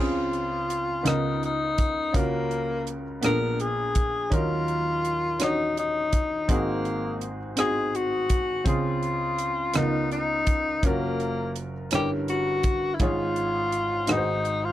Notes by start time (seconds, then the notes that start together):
Already playing: C#2 C#3 C4 C#4 F4
0.00 F4 G#4
0.33 closed hi-hat
0.70 closed hi-hat
1.03 C#2 C#3 B3 D#4 F4 A#4, closed hi-hat
1.07 cross-stick
1.43 D#4, closed hi-hat
1.78 kick, closed hi-hat
2.12 C#2 C#3 C#4 F4 F#4 A#4, kick, closed hi-hat
2.17 A#3
2.51 closed hi-hat
2.87 closed hi-hat
3.21 A#1 A#2 B3 D4 G#4 A4 A#4, cross-stick, closed hi-hat
3.32 A#4
3.60 G#4, closed hi-hat
3.95 kick, closed hi-hat
4.30 D#2 D#3 F#3 C#4 D#4 A#4, kick, closed hi-hat
4.34 F4
4.68 closed hi-hat
5.05 closed hi-hat
5.39 C#4 D#4 F#4 C#5, cross-stick, closed hi-hat
5.43 D#4
5.77 D#4, closed hi-hat
6.13 kick, closed hi-hat
6.48 G#1 G#2 A#3 C4 D#4 F#4 G#4, kick, closed hi-hat
6.85 closed hi-hat
7.21 closed hi-hat
7.56 C4 D#4 F#4 G#4, cross-stick, closed hi-hat
7.95 F#4, closed hi-hat
8.29 kick, closed hi-hat
8.64 C#2 C#3 C4 C#4 F4 G#4, kick, closed hi-hat
9.03 closed hi-hat
9.38 closed hi-hat
9.74 C#2 C#3 B3 D#4 F4 A#4, cross-stick, closed hi-hat
10.12 D#4, closed hi-hat
10.47 kick, closed hi-hat
10.83 F#1 F#2 A#3 C#4 F4 F#4 A#4, kick, closed hi-hat
11.20 closed hi-hat
11.56 closed hi-hat
11.91 G1 G2 G3 C#4 E4 A#4, cross-stick, closed hi-hat
11.95 G4
12.28 F#4, closed hi-hat
12.63 kick, closed hi-hat
12.94 E4
13.00 G#1 G#2 C#4 F4 G#4 C#5, kick, closed hi-hat
13.04 F4
13.36 closed hi-hat
13.72 closed hi-hat
14.07 G#1 G#2 D#4 F#4 G#4 B4, cross-stick, closed hi-hat
14.12 D#4
14.17 C5
14.45 closed hi-hat
14.65 F4